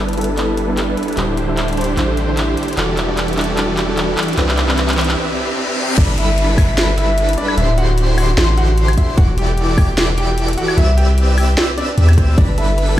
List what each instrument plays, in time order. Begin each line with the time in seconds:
Already playing: 808-style bass G1, supersaw synth G3 D4 E4 A4 B4, riser
0.08 synth arpeggio sound D4, closed hi-hat
0.13 synth pluck G3, closed hi-hat
0.17 supersaw synth G3 D4 E4 A4 B4, synth pluck B3 E4 A4, closed hi-hat
0.21 closed hi-hat
0.24 closed hi-hat
0.28 synth arpeggio sound D4
0.37 synth pluck G3 B3 E4 A4, synth arpeggio sound D4, clap, closed hi-hat
0.48 synth arpeggio sound A4
0.57 closed hi-hat
0.67 synth pluck G3 B3 E4 A4, synth arpeggio sound A4
0.76 synth pluck G3 B3 E4 D5, synth arpeggio sound G4, clap, closed hi-hat
0.88 synth arpeggio sound D4
0.97 closed hi-hat
1.03 closed hi-hat
1.08 synth arpeggio sound D4, closed hi-hat
1.13 synth pluck G3, closed hi-hat
1.17 808-style bass D1, supersaw synth D3 D4 E4 G4 C5, synth pluck D4 E4 C5, synth arpeggio sound D4, clap, closed hi-hat
1.28 synth arpeggio sound A4
1.37 closed hi-hat
1.47 synth pluck G3 D4 E4 E5, synth arpeggio sound A4
1.57 synth arpeggio sound D5, clap, closed hi-hat
1.68 synth arpeggio sound D4, closed hi-hat
1.73 synth pluck G3, closed hi-hat
1.77 supersaw synth D3 D4 E4 G4 C5, synth pluck D4 E4 C5, closed hi-hat
1.81 closed hi-hat
1.84 closed hi-hat
1.88 synth arpeggio sound D4
1.96 808-style bass A1, synth pluck G3 D4 E4 C5, synth arpeggio sound D4, clap, closed hi-hat
2.08 synth arpeggio sound A4
2.17 closed hi-hat
2.27 synth pluck G3 D4 E4 C5, synth arpeggio sound A4
2.36 synth pluck G3 D4 E4 E5, synth arpeggio sound G4, clap, closed hi-hat
2.48 synth arpeggio sound D4
2.57 closed hi-hat
2.63 closed hi-hat
2.68 synth arpeggio sound D4, closed hi-hat
2.73 synth pluck G3, closed hi-hat
2.77 808-style bass E1, supersaw synth E3 E4 F#4 G4 A4 D5, synth pluck D4 F#4 A4, synth arpeggio sound D4, clap, closed hi-hat
2.88 synth arpeggio sound G4
2.97 clap, closed hi-hat
3.07 synth pluck G3 D4 F#4 D5, synth arpeggio sound G4
3.17 synth arpeggio sound B4, clap, closed hi-hat
3.28 synth arpeggio sound D4, closed hi-hat
3.33 synth pluck G3 D4, closed hi-hat
3.37 supersaw synth E3 E4 F#4 G4 A4 D5, synth pluck F#4 A4, clap, closed hi-hat
3.41 closed hi-hat
3.44 closed hi-hat
3.48 synth arpeggio sound D4
3.56 synth pluck G3 D4 F#4 A4, synth arpeggio sound D4, clap, closed hi-hat
3.69 synth arpeggio sound G4
3.77 clap, closed hi-hat
3.87 synth pluck G3 D4 F#4 A4, synth arpeggio sound G4
3.96 synth pluck G3 D4 F#4 D5, synth arpeggio sound F#4, clap, closed hi-hat
4.09 synth arpeggio sound D4
4.17 clap, closed hi-hat
4.23 closed hi-hat
4.28 synth arpeggio sound D4, closed hi-hat
4.33 synth pluck E3, closed hi-hat
4.37 808-style bass C2, synth pluck C4 D4 B4, supersaw synth C4 G4 B4 D5 E5, synth arpeggio sound D4, clap, closed hi-hat
4.48 synth arpeggio sound B4, clap
4.58 clap, closed hi-hat
4.67 synth pluck E3 C4 D4 D5, synth arpeggio sound B4, clap
4.78 synth arpeggio sound D5, clap, closed hi-hat
4.89 synth arpeggio sound D4, clap, closed hi-hat
4.93 synth pluck E3, closed hi-hat
4.97 synth pluck C4 D4 B4, supersaw synth C4 G4 B4 D5 E5, clap, closed hi-hat
5.01 closed hi-hat
5.04 closed hi-hat
5.09 synth arpeggio sound D4, clap
5.18 reverse cymbal
5.97 808-style bass G1, supersaw synth G3 D4 E4 A4 B4, grand piano D4 D5, digital synth lead B5, kick, closed hi-hat, crash, downlifter
6.18 grand piano E4 E5, closed hi-hat
6.38 closed hi-hat
6.57 supersaw synth G3 D4 E4 A4 B4, grand piano E4 E5, digital synth lead B5, kick, open hi-hat, high woodblock
6.78 snare, closed hi-hat
6.97 grand piano E4 E5, closed hi-hat
7.18 closed hi-hat
7.29 closed hi-hat
7.33 closed hi-hat
7.37 grand piano D4 D5, closed hi-hat
7.48 high woodblock
7.57 808-style bass D1, supersaw synth D3 D4 E4 G4 C5, grand piano E4 E5, digital synth lead C6, closed hi-hat
7.78 grand piano F#4 F#5, closed hi-hat
7.98 closed hi-hat
8.17 supersaw synth D3 D4 E4 G4 C5, grand piano F#4 F#5, digital synth lead C6, open hi-hat, high woodblock
8.38 808-style bass A1, snare, closed hi-hat
8.57 grand piano F#4 F#5, closed hi-hat
8.78 closed hi-hat
8.88 closed hi-hat, high woodblock
8.93 closed hi-hat
8.98 grand piano E4 E5, kick, closed hi-hat
9.17 808-style bass E1, supersaw synth E3 E4 F#4 G4 A4 D5, grand piano F#4 F#5, digital synth lead D6, kick, closed hi-hat
9.38 grand piano G4 G5, closed hi-hat
9.58 closed hi-hat
9.77 supersaw synth E3 E4 F#4 G4 A4 D5, grand piano G4 G5, digital synth lead D6, kick, open hi-hat, high woodblock
9.98 snare, closed hi-hat
10.18 grand piano G4 G5, closed hi-hat
10.38 closed hi-hat
10.48 closed hi-hat
10.53 closed hi-hat
10.57 grand piano F#4 F#5, closed hi-hat
10.68 high woodblock
10.77 808-style bass C2, supersaw synth C4 G4 B4 D5 E5, grand piano E4 E5, digital synth lead E6, closed hi-hat
10.97 grand piano G4 G5, closed hi-hat
11.18 closed hi-hat
11.37 supersaw synth C4 G4 B4 D5 E5, grand piano G4 G5, digital synth lead E6, open hi-hat, high woodblock
11.58 snare, closed hi-hat
11.77 grand piano D4 D5, closed hi-hat
11.98 808-style bass E2, closed hi-hat
12.09 closed hi-hat, high woodblock
12.13 closed hi-hat
12.17 808-style bass D2, grand piano C4 C5, kick, closed hi-hat
12.38 808-style bass G1, supersaw synth G3 D4 E4 A4 B4, grand piano D4 D5, synth arpeggio sound D4, digital synth lead B5, kick, closed hi-hat, crash
12.49 synth arpeggio sound B4
12.57 grand piano E4 E5, synth arpeggio sound A4, closed hi-hat
12.78 synth arpeggio sound B4, closed hi-hat
12.89 synth arpeggio sound A4